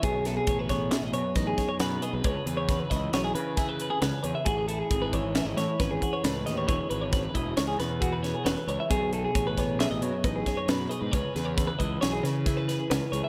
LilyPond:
<<
  \new Staff \with { instrumentName = "Clean electric guitar" } { \time 5/4 \key b \mixolydian \tempo 4 = 135 gis'8 a'16 gis'8 b'16 cis''8 e''16 dis''16 cis''8 b'16 gis'8 cis''16 b'8 dis''16 b'16 | cis''8 b'16 cis''8 b'16 dis''8 cis''16 gis'16 b'8 gis'16 b'8 gis'16 b'8 cis''16 e''16 | gis'8 a'16 gis'8 b'16 cis''8 e''16 dis''16 cis''8 b'16 gis'8 cis''16 b'8 dis''16 cis''16 | cis''8 b'16 cis''8 b'16 dis''8 cis''16 gis'16 b'8 fis'16 b'8 gis'16 b'8 cis''16 e''16 |
gis'8 a'16 gis'8 b'16 cis''8 e''16 dis''16 cis''8 b'16 gis'8 cis''16 b'8 dis''16 b'16 | cis''8 b'16 cis''8 b'16 dis''8 cis''16 gis'16 b'8 gis'16 b'8 gis'16 b'8 cis''16 e''16 | }
  \new Staff \with { instrumentName = "Clean electric guitar" } { \time 5/4 \key b \mixolydian << { cis''8 gis'8 cis''4 gis'4 dis'8 cis''8 b'8 gis'8 | b'8 gis'8 b'4 gis'4 e'8 b'8 cis''8 gis'8 | fis'16 gis'16 e'8 gis'4 cis'16 e'8. cis'8 fis'8 b'8 cis'16 e'16 | <e' gis' cis''>8 cis''8 b'4 cis''4 gis'8 cis''8 cis''8 cis''8 |
cis''8 gis'8 cis''4 gis'4 dis'8 cis''8 b'8 gis'8 | b'8 gis'8 b'4 gis'4 e'8 b'8 cis''8 gis'8 | } \\ { b,4. b4 fis,4. b,4 | cis4. e4 cis4. cis4 | r4. e4 e4. a,4 | e4. e'4 b,4. e4 |
b,4. b4 fis,4. b,4 | cis4. e4 cis4. cis4 | } >> }
  \new Staff \with { instrumentName = "Fingered electric bass" } { \clef bass \time 5/4 \key b \mixolydian b,,4 a,,4 b,,16 a,,16 b,16 r16 a,,8 r8 fis,8 r16 b,,16 | cis,16 r16 e,4 cis,8 b,,8 cis4. cis,16 r16 e,16 r16 | a,,4 gis,,4 a,,16 gis,,16 a,16 r16 gis,,8 r8 cis,8 dis,8 | e,,16 r16 gis,,4 e,,8 cis,8 e,4. e,,16 r16 cis,16 r16 |
b,,4 a,,4 b,,16 a,,16 b,16 r16 a,,8 r8 fis,8 r16 gis,16 | cis,16 r16 e,4 cis,8 b,,8 cis4. cis,16 r16 cis,16 r16 | }
  \new DrumStaff \with { instrumentName = "Drums" } \drummode { \time 5/4 <hh bd>8 <hh sn>8 <hh bd>8 <hh bd sn>8 <hh sn>8 hh8 <hh bd sn>8 <hh bd sn>8 <hh sn>8 hh8 | <hh bd>8 hh8 <hh bd sn>8 <hh bd sn>8 <hh sn>8 hh8 <hh bd sn>8 hh8 <hh sn>8 hh8 | <hh bd>8 hh8 <hh bd>8 <hh bd>8 <hh sn>8 <hh sn>8 <hh bd sn>8 <hh bd>8 <hh sn>8 <hh sn>8 | <hh bd>8 hh8 <hh bd sn>8 <hh bd>8 <hh sn>8 <hh sn>8 <hh bd>8 <hh sn>8 <hh sn>8 hh8 |
<hh bd>8 hh8 <hh bd>8 <hh bd sn>8 <hh sn>8 hh8 <hh bd>8 <hh bd sn>8 <hh sn>8 hh8 | <hh bd>8 <hh sn>8 <hh bd sn>8 <hh bd>8 <hh sn>8 <hh sn>8 <hh bd sn>8 <hh sn>8 <hh sn>8 hh8 | }
>>